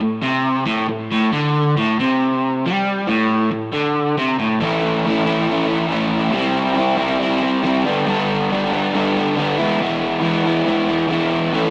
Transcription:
overdriven electric guitar
0.01 A2
0.22 C3
0.66 A2
0.89 A2
1.11 A2
1.32 D3
1.77 A2
2.00 C3
2.66 G3
3.07 A2
3.52 A2
3.72 D3
4.17 C3
4.39 A2
4.60 A2 E3 A3 C#4
4.65 E4
5.06 E3 A3 C#4
5.10 E4
5.25 C#4 E4
5.29 A3
5.47 A2 E3 A3 C#4
5.52 E4
5.67 C#4 E4
5.71 A3
5.88 E3 A3 C#4
5.92 E4
6.31 C3 G3 C4
6.36 E4
6.74 C3 G3 C4
6.79 E4
6.97 C4 E4
7.01 G3
7.18 C3 G3 C4
7.23 E4
7.40 C4 E4
7.45 G3
7.62 C3 G3 C4
7.67 E4
7.85 G2 D3 G3 B3 D4
8.07 G2 D3 G3 B3 D4
8.50 D3 G3 B3
8.55 D4
8.72 G3 B3 D4
8.93 G2 D3 G3 B3
8.98 D4
9.15 B3 D4
9.20 G3
9.36 D3 G3 B3
9.40 D4
9.58 G#3 B3 E4
9.63 E3
9.79 E3 G#3 B3
9.84 E4
10.20 E3 G#3 B3
10.25 E4
10.44 B3 E4
10.48 G#3
10.66 E3 G#3 B3 E4
10.85 B3 E4
10.90 G#3
11.08 E3 G#3 B3
11.13 E4
11.51 A2 E3 A3 C#4 E4

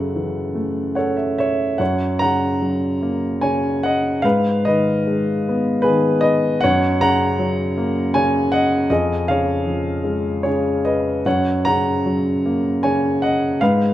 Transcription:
grand piano
Already playing: F#2 C#3 A4 F#5
0.15 E3
0.55 A3
0.95 A4 C#5 F#5
1.17 E5
1.38 C#5 E5
1.78 F#2 C#5 F#5
2.19 C#3 F#5 A#5
2.62 F#3
3.03 A#3
3.41 C#3 C#5 G#5
3.83 D#5 F#5
4.22 G#2 B4 F5
4.65 D#3 B4 D#5
5.07 G#3
5.49 B3
5.82 G#4 B4
5.86 D#3
6.21 B4 D#5
6.61 F#2 C#5 F#5
7.01 C#3 F#5 A#5
7.39 F#3
7.77 A#3
8.14 C#3 C#5 G#5
8.52 D#5 F#5
8.90 F2 G#4 D#5
9.28 C#3 C#5 F5
9.66 F3
10.04 G#3
10.43 C#3 G#4 C#5
10.85 B4 D#5
11.26 F#2 C#5 F#5
11.65 C#3 F#5 A#5
12.06 F#3
12.46 A#3
12.83 C#3 C#5 G#5
13.22 D#5 F#5
13.61 G#2 B4 F5

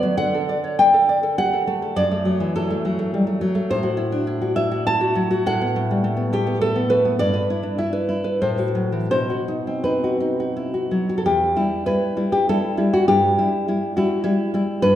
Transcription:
nylon-string guitar
Already playing: D3 A3 B3 D5
0.03 F#3
0.17 D3 F#5
0.34 A4
0.49 D5
0.64 C#5
0.79 D5 G5
0.94 A4
1.09 D5
1.23 A4
1.38 G4 F#5
1.53 A4
1.67 A3
1.82 A4
1.96 F#2 D5
2.11 A3
2.25 F#3
2.40 E3
2.56 F#3 A4
2.70 A3
2.85 F#3
2.99 A3
3.14 G3
3.27 A3
3.41 F#3
3.55 A3
3.70 A2 C5
3.83 F#4
3.97 E4
4.12 D4
4.27 E4
4.42 F#4
4.56 E4 E5
4.72 F#4
4.87 E4 A5
5.01 F#4
5.15 F#3
5.31 F#4
5.46 A2 F#5
5.61 B3
5.76 A3
5.91 G3
6.04 A3
6.17 B3
6.33 A3 G4
6.47 B3
6.61 A3 A4
6.76 B3
6.90 A3 B4
7.05 B3
7.19 G2 D5
7.34 B4
7.50 E4
7.63 D4
7.78 E4 E5
7.93 B4
8.09 E4
8.24 B4
8.42 A2 C5
8.59 F#4
8.75 F#3
8.92 E3
9.11 B2 C5
9.30 F#4
9.48 D#4
9.67 C4
9.84 D#4 B4
10.04 F#4
10.20 D#4
10.40 F#4
10.57 E4
10.74 F#4
10.91 F#3
11.09 F#4
11.18 A4
11.26 E2 G4
11.56 G3 E4
11.86 G3 E4 B4
12.17 G3 E4
12.32 G4
12.49 G3 E4 A4
12.77 G3 E4
12.94 F#4
13.08 G2 G4
13.39 G3 E4
13.68 G3 E4
13.97 G3 E4 F#4
14.24 G3 E4
14.54 G3 E4
14.82 G2 B4

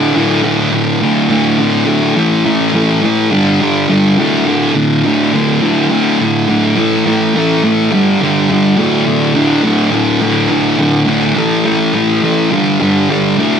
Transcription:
distorted electric guitar
Already playing: D2 A2 D3
0.14 D2 A2 D3
0.43 D2 A2 D3
0.71 D2 A2 D3
1.01 D2 A2 D3
1.29 D2 A2 D3
1.58 D2 A2 D3
1.86 D2 A2 D3
2.16 A2 E3 A3
2.45 A2 E3 A3
2.73 A2 E3 A3
3.02 A2 E3 A3
3.31 G2 D3 G3
3.60 G2 D3 G3
3.89 G2 D3 G3
4.18 D2 A2 D3
4.46 D2 A2 D3
4.74 D2 A2 D3
5.04 D2 A2 D3
5.33 D2 A2 D3
5.62 D2 A2 D3
5.91 D2 A2 D3
6.20 D2 A2 D3
6.48 D2 A2 D3
6.77 A2 E3 A3
7.05 A2 E3 A3
7.34 A2 E3 A3
7.63 A2 E3 A3
7.91 G2 D3 G3
8.21 G2 D3 G3
8.49 G2 D3 G3
8.77 D2 A2 D3
9.05 D2 A2 D3
9.34 D2 A2 D3
9.63 D2 A2 D3
9.91 D2 A2 D3
10.21 D2 A2 D3
10.49 D2 A2 D3
10.78 D2 A2 D3
11.06 D2 A2 D3
11.35 A2 E3 A3
11.64 A2 E3 A3
11.93 A2 E3 A3
12.22 A2 E3 A3
12.51 G2 D3 G3
12.80 G2 D3 G3
13.09 G2 D3 G3
13.38 D2 A2 D3

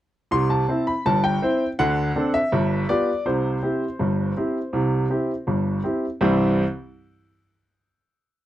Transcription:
grand piano
0.31 C2 C3 C6
0.50 A5
0.69 C4 E4 C5
0.87 B5
1.06 G1 G2 A5
1.24 G5
1.42 C4 E4 C5
1.79 D2 D3 F#5
2.16 C4 D4 A4
2.34 E5
2.52 G1 G2
2.89 B3 F4 G4 D5
3.26 C2 C3 C5
3.63 C4 E4 G4
3.99 G1 G2
4.37 C4 E4 G4
4.73 C2 C3
5.10 C4 E4 G4
5.47 G1 G2
5.84 C4 E4 G4
6.21 C2 G2 E3 G3 C4 E4

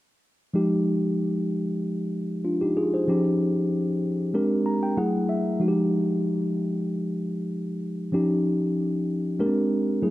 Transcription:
tine electric piano
0.54 F3 G#3 D#4 G4
2.45 D4 F4
2.61 D#4 G4
2.77 F4 G#4
2.94 G#4 C5
3.08 F3 C#4 D#4 G4
4.34 G#3 C4 D4 G4 A#4
4.66 A#5
4.83 G5
4.97 F#3 A3 E4 G#4 F#5
5.29 E5
5.60 F3 G#3 D#4 F#4
5.68 G4
8.12 F3 C#4 D#4 G4
9.39 G#3 A#3 D4 G4 A#4
9.46 C4
10.02 F#3 A3 E4 G#4

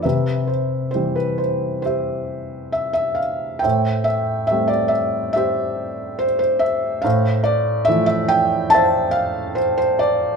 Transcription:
felt piano
0.02 C3 G4 B4 E5
0.47 C5
0.91 G3 C5
0.95 E3 C4
1.16 B4
1.38 C5
1.82 G4 C5 E5
2.72 E5
2.93 E5
3.15 F5
3.59 C5 E5 G5
3.64 A2
4.04 E5
4.47 A3 E5
4.51 G3 C4
4.68 D5
4.88 E5
5.33 G4 C5 E5
6.19 C5
6.39 C5
6.59 E5
7.02 A2 C5 F5
7.44 D5
7.85 F3 E5
7.89 E3 A3
8.06 E5
8.28 G5
8.70 E5 A5
8.74 C5
9.11 F5
9.55 C5
9.78 C5
9.99 D5

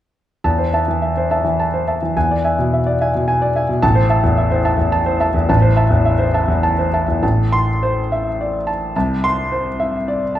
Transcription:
grand piano
0.44 E2 A5
0.58 C5
0.73 E5 A5
0.88 E3
1.02 E5
1.17 C5
1.31 E5 A5
1.44 E3
1.60 A5
1.74 C5
1.88 E5 A5
2.02 E3
2.17 E2 G#5
2.31 D5
2.44 E5 G#5
2.59 B2
2.73 E5
2.87 D5
3.01 E5 G#5
3.15 B2
3.28 G#5
3.42 D5
3.56 E5 G#5
3.69 B2
3.82 A1 A5
3.95 C5
4.10 E5 A5
4.24 E2
4.37 E5
4.51 C5
4.65 E5 A5
4.78 E2
4.92 A5
5.06 C5
5.20 E5 A5
5.34 E2
5.49 A1 A5
5.62 C5
5.76 E5 A5
5.90 E2
6.05 E5
6.19 C5
6.34 E5 A5
6.48 E2
6.63 A5
6.79 C5
6.93 E5 A5
7.08 E2
7.23 A1 A5
7.52 C6
7.83 C5
8.12 E5
8.41 D5
8.67 A5
8.96 C2 A5
9.24 C6
9.52 C5
9.80 E5
10.08 D5
10.35 A5

